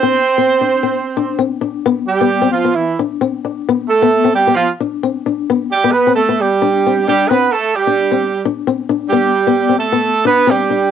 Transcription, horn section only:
Already playing: C4 C5
2.06 G3 G4
2.51 F3 F4
2.75 E3 E4
3.89 A3 A4
4.34 G3 G4
4.55 F3 F4
5.72 G3 G4
5.92 B3 B4
6.14 A3 A4
6.40 G3 G4
7.07 G3 G4
7.28 B3 B4
7.53 A3 A4
7.75 G3 G4
9.09 G3 G4
9.78 A3 A4
10.26 B3 B4
10.50 G3 G4

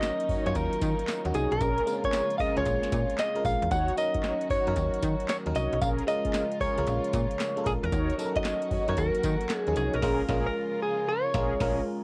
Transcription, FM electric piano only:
Already playing: F#3 C#4 D#4 A#4
0.46 F#3 C#4 D#4 F4
1.24 F#3 C#4 D#4 F#4
1.86 G#3 C4 F4 A#4
1.93 C#4
2.56 G#3 C#4 F4 G#4
3.35 G#3 C#4 F4 A#4
3.97 F#3 C#4 D#4 A#4
4.67 F#3 C#4 D#4 A#4
5.46 F#3 C#4 D#4 A#4
6.08 G#3 C#4 F4 A#4
6.77 G#3 C#4 F4 A#4
7.56 G#3 C#4 F4 A4
7.64 A#4
8.18 F#3 C#4 D#4 A4
8.25 A#4
8.88 F#3 C#4 D#4 A#4
9.67 F3 C#4 D#4 G#4
9.73 F#3
10.02 G#3 C#4 F4 A#4
10.29 G#3 C#4 F4 A#4
11.34 G#3 C#4 F4 A#4
11.60 G#3 C#4 F4 A#4

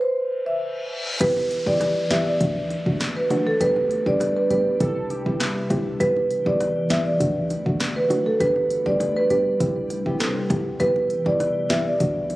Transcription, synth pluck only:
1.20 G3 B3 E4 G4
1.66 G3 B3 E4 G4
2.10 G3 B3 E4 G4
2.40 F#3 A3 D4 F#4
2.86 F#3 A3 D4 F#4
3.30 F#3 A3 D4 F#4
3.60 G3 B3 D4 G4
4.06 G3 B3 D4 G4
4.50 G3 B3 D4 G4
4.80 G3 C4 E4 G4
5.26 G3 C4 E4 G4
5.70 G3 C4 E4 G4
6.00 G3 B3 E4 G4
6.46 G3 B3 E4 G4
6.90 G3 B3 E4 G4
7.20 F#3 A3 D4 F#4
7.66 F#3 A3 D4 F#4
8.10 F#3 A3 D4 F#4
8.40 G3 B3 D4 G4
8.86 G3 B3 D4 G4
9.30 G3 B3 D4 G4
9.60 G3 C4 E4 G4
10.06 G3 C4 E4 G4
10.50 G3 C4 E4 G4
10.80 G3 B3 E4 G4
11.26 G3 B3 E4 G4
11.70 G3 B3 E4 G4
12.00 F#3 A3 D4 F#4

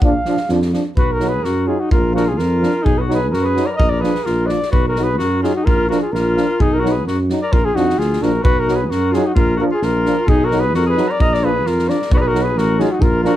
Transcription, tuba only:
0.03 A#1
0.49 F2
0.97 B1
1.44 F#2
1.92 A#1
2.39 F2
2.85 B1
3.33 F#2
3.80 A#1
4.27 A#1
4.74 B1
5.20 F#2
5.66 A#1
6.12 A#1
6.60 B1
7.06 F#2
7.52 A#1
7.75 F2
7.98 D2
8.21 A#1
8.44 B1
8.90 F#2
9.35 A#1
9.82 A#1
10.28 B1
10.74 F2
11.20 A#1
11.65 F2
12.11 B1
12.56 A1
13.00 A#1

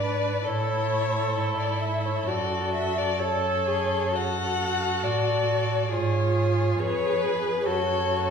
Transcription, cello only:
Already playing: G#2
0.45 A2
1.35 G#2
2.27 F#2
5.03 A2
5.92 G#2
6.79 F2
7.65 F#2

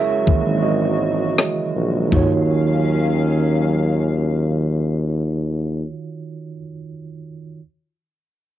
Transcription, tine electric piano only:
Already playing: C#4 E4 G#4 A#4 C#5 E5
0.26 D#3 E3 G#3 A#3
0.63 F#4 D#5
2.08 D#3 D#4
2.12 F4 F#4
2.17 C#5

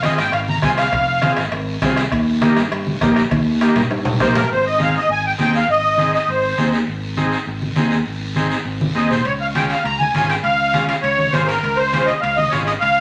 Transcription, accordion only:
0.04 D#5
0.19 G5
0.33 F5
0.49 A#5
0.64 G#5
0.78 F5
4.21 C5
4.36 A#4
4.52 C5
4.67 D#5
4.82 F5
4.97 D#5
5.11 G#5
5.27 G5
5.41 G5
5.56 F5
5.70 D#5
6.14 D#5
6.29 C5
8.95 D#5
9.10 C5
9.26 C#5
9.41 F5
9.55 G5
9.67 F5 G5
9.85 A#5
9.99 G#5
10.14 G#5
10.29 G5
10.43 F5
10.88 F5
11.02 C#5
11.31 C5
11.46 A#4
11.77 C5
12.05 D#5
12.21 F5
12.36 D#5
12.50 C#5
12.65 D#5
12.80 F5

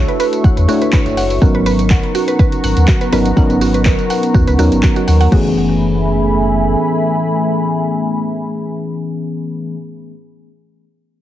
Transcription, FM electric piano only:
Already playing: A3 D4 E4 F#4 C#5
0.68 A3 D4 E4 F#4 C#5
1.41 F#3 B3 C#4 D#4 A#4
3.12 F#3 B3 C#4 D#4 A#4
3.36 F#3 B3 C#4 D#4 A#4
4.58 F#3 B3 C#4 D#4 A#4
5.31 E3 A3 B3 C#4 G#4

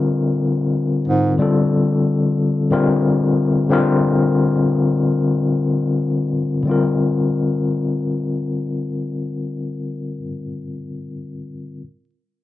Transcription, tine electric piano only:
Already playing: D3 G3 C4 F4 A#4
1.38 D3 G3 C4 F4 A4
2.71 D3 G3 C4 F4 A#4
3.69 D3 G3 C4 F4
3.73 A#4
6.63 D3 G3
6.67 C4 F4
6.71 A#4

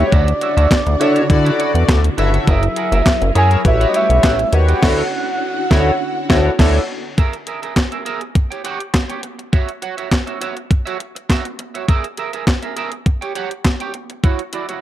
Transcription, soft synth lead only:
0.07 C#5
0.13 D5
2.50 E5
3.38 G#5
3.67 E5
3.89 D#5
3.96 E5
4.54 F#5

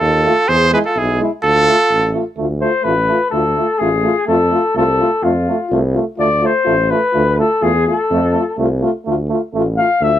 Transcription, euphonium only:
0.25 A3
0.72 G#3
1.19 G#3
1.66 A3
2.13 A3
2.37 A3
2.61 A3
2.83 A3
3.08 A3
3.32 A3
3.56 A3
3.79 A3
4.02 A3
4.27 A3
4.50 A3
4.75 A3
5.00 A3
5.23 A3
5.49 A3
5.72 A3
5.95 A3
6.18 A3
6.43 A3
6.65 A3
6.90 A3
7.13 A3
7.38 A3
7.62 A3
7.87 A3
8.11 A3
8.33 A3
8.57 A3
8.81 A3
9.06 A3
9.29 A3
9.54 A3
9.76 A3
10.01 A3

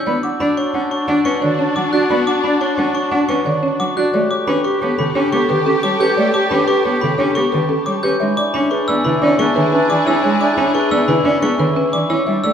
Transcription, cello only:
0.06 B3
0.40 D4
0.74 C#4
1.08 D4
1.25 C#4
1.42 D3
1.76 F#3
1.93 D4
2.10 B3
2.44 D4
2.78 C#4
3.12 D4
3.29 C#4
3.45 D3
3.80 F#3
3.97 D4
4.14 A3
4.47 C#4
4.82 B3
4.99 C#3
5.15 C#4
5.33 B3
5.49 D3
5.83 G3
6.01 C#4
6.17 A3
6.51 C#4
6.85 B3
7.02 C#3
7.19 C#4
7.36 B3
7.53 D3
7.87 G3
8.04 C#4
8.21 G#3
8.55 C#4
8.89 B3
9.06 C#3
9.22 C#4
9.39 B3
9.57 D3
9.90 E3
10.07 C#4
10.23 G#3
10.57 C#4
10.91 B3
11.08 C#3
11.25 C#4
11.42 B3
11.59 D3
11.93 E3
12.10 C#4
12.27 G3
12.44 A3

